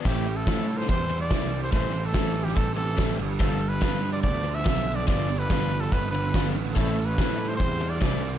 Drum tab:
HH |x-x-x-x-x-x-x-x-|x-x-x-x-x-x-x-x-|x-x-x-x-x-x-x-x-|x-x-x-x-x-x-x-x-|
SD |----o--o----o---|----o--o----o---|----o-------o---|----o-------o---|
BD |o---o---o---o---|o---o---o---o---|o---o---o---o---|o---o---o---o---|

HH |x-x-x-x-x-x-x-x-|
SD |----o-------o---|
BD |o---o---o---o---|